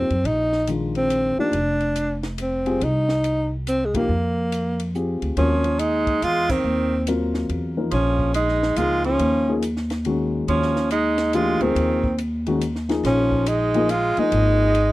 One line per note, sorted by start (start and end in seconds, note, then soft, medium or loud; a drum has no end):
0.00 0.28 C4 medium
0.10 0.23 F#2 medium
0.10 ride soft
0.24 1.34 A#1 medium
0.24 0.69 D#4 medium
0.24 ride medium
0.52 snare soft
0.67 1.33 D#3 medium
0.67 1.33 G#3 soft
0.67 1.33 D4 medium
0.67 1.33 F4 medium
0.67 hi-hat pedal medium
0.67 ride medium
0.95 1.36 C4 medium
0.95 ride soft
1.10 hi-hat pedal medium
1.10 ride medium
1.37 1.52 F3 medium
1.37 1.52 A#3 medium
1.37 2.20 D4 medium
1.37 1.52 D#4 medium
1.37 1.52 G4 medium
1.37 muted upright bass stroke soft
1.52 2.76 F1 medium
1.52 ride medium
1.80 ride soft
1.96 hi-hat pedal medium
1.96 ride medium
2.23 snare soft
2.23 ride soft
2.38 2.85 C4 medium
2.38 hi-hat pedal soft
2.38 ride medium
2.66 2.80 G3 medium
2.66 2.80 C4 medium
2.66 2.80 F4 medium
2.66 2.80 G#4 medium
2.66 ride soft
2.81 4.05 C2 medium
2.81 3.53 D#4 medium
2.81 ride medium
3.09 snare soft
3.24 hi-hat pedal medium
3.24 ride medium
3.67 3.87 C4 medium
3.67 hi-hat pedal medium
3.67 ride medium
3.85 3.97 G#3 medium
3.94 4.08 F3 medium
3.94 4.08 A#3 medium
3.94 4.95 A#3 medium
3.94 4.08 D#4 medium
3.94 4.08 G4 medium
3.94 kick medium
3.94 ride medium
4.09 5.18 F2 medium
4.52 hi-hat pedal medium
4.52 ride medium
4.80 ride medium
4.95 5.36 C4 soft
4.95 5.36 F4 medium
4.95 5.37 G4 medium
4.95 5.38 G#4 medium
4.95 hi-hat pedal soft
5.22 5.36 D2 medium
5.22 ride soft
5.37 6.18 D#2 medium
5.37 5.81 F3 medium
5.37 5.62 F#3 medium
5.37 5.62 C4 medium
5.37 5.81 C#4 medium
5.37 5.62 F4 medium
5.37 5.62 A#4 medium
5.37 ride medium
5.64 ride soft
5.79 6.22 G#3 medium
5.79 6.25 D#4 medium
5.79 hi-hat pedal soft
5.79 ride medium
6.07 kick medium
6.07 ride soft
6.22 6.62 E2 medium
6.22 6.52 G#3 medium
6.22 6.52 F4 loud
6.22 hi-hat pedal medium
6.22 ride medium
6.49 7.08 D#3 medium
6.49 7.08 C4 medium
6.49 kick medium
6.49 crash medium
6.64 7.46 D#2 medium
7.07 7.72 F#3 medium
7.07 7.72 C4 medium
7.07 7.72 F4 medium
7.07 7.72 A#4 medium
7.07 hi-hat pedal medium
7.07 ride medium
7.34 snare soft
7.49 7.89 E2 medium
7.49 ride soft
7.77 7.91 F3 medium
7.77 7.91 A#3 medium
7.77 7.91 D#4 medium
7.77 7.91 A#4 medium
7.91 8.73 A#1 medium
7.91 8.31 F3 medium
7.91 8.32 C#4 medium
7.91 ride medium
8.19 kick medium
8.34 8.77 G#3 medium
8.34 8.79 D#4 medium
8.34 hi-hat pedal medium
8.34 ride medium
8.48 snare soft
8.63 snare soft
8.76 9.17 C#2 medium
8.76 9.42 F3 medium
8.76 9.04 G#3 medium
8.76 9.42 A#3 medium
8.76 9.42 D#4 medium
8.76 9.05 F4 medium
8.76 9.42 G#4 medium
8.76 hi-hat pedal soft
8.76 ride medium
9.04 9.59 F3 medium
9.04 9.59 C#4 medium
9.04 ride soft
9.19 10.44 D#2 medium
9.19 ride medium
9.48 9.61 F3 medium
9.48 9.62 A#3 medium
9.48 9.62 D#4 medium
9.48 9.62 G#4 medium
9.62 hi-hat pedal medium
9.62 ride medium
9.77 snare soft
9.90 snare soft
9.90 ride soft
10.05 10.70 D#3 medium
10.05 10.70 G#3 medium
10.05 10.70 C#4 medium
10.05 10.71 F#4 medium
10.05 ride medium
10.48 11.57 D#2 medium
10.48 10.88 F3 medium
10.48 10.88 C#4 medium
10.48 ride medium
10.63 snare soft
10.76 snare soft
10.91 11.34 G#3 medium
10.91 11.36 D#4 medium
10.91 hi-hat pedal medium
10.91 ride medium
11.18 snare soft
11.18 ride soft
11.33 11.58 E3 medium
11.33 11.63 G#3 medium
11.33 11.58 A3 medium
11.33 11.59 D4 medium
11.33 11.63 F4 medium
11.33 11.59 G4 medium
11.33 hi-hat pedal medium
11.33 ride medium
11.61 11.75 D2 medium
11.61 12.19 D#3 medium
11.61 11.98 F3 medium
11.61 11.98 A#3 medium
11.61 12.19 C4 medium
11.61 11.98 D#4 medium
11.61 11.98 G#4 medium
11.61 ride soft
11.75 13.00 D#2 medium
11.75 ride medium
12.04 kick medium
12.18 hi-hat pedal medium
12.18 ride medium
12.46 12.60 D#3 medium
12.46 12.60 G#3 medium
12.46 12.60 C#4 medium
12.46 12.61 F#4 medium
12.46 ride soft
12.61 hi-hat pedal soft
12.61 ride medium
12.76 snare soft
12.89 13.44 F3 medium
12.89 13.44 A#3 medium
12.89 13.44 D#4 medium
12.89 13.44 G#4 medium
12.89 snare soft
12.89 ride soft
13.03 14.13 A#1 medium
13.03 13.49 F3 medium
13.03 13.50 C#4 medium
13.03 snare soft
13.03 ride medium
13.32 kick soft
13.46 13.90 G#3 medium
13.46 13.92 D#4 medium
13.46 hi-hat pedal medium
13.46 ride medium
13.74 13.88 F3 medium
13.74 13.88 A#3 medium
13.74 13.89 D#4 medium
13.74 13.89 G#4 medium
13.74 ride soft
13.89 14.17 G#3 medium
13.89 14.20 F4 loud
13.89 hi-hat pedal medium
13.89 ride medium
14.17 14.72 F3 medium
14.17 14.92 G#3 medium
14.17 14.73 A#3 medium
14.17 14.73 D#4 medium
14.17 14.92 D#4 medium
14.17 14.73 G#4 medium
14.17 muted upright bass stroke soft
14.17 ride soft
14.32 14.92 G#1 medium
14.32 ride medium
14.75 ride medium